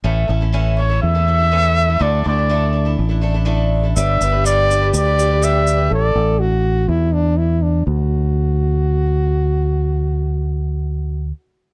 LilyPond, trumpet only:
\new Staff \with { instrumentName = "Trumpet" } { \time 4/4 \key d \major \tempo 4 = 123 r4. cis''8 e''2 | d''8 d''4. r2 | e''4 d''4 d''4 e''4 | d''4 r2. |
r1 | r1 | }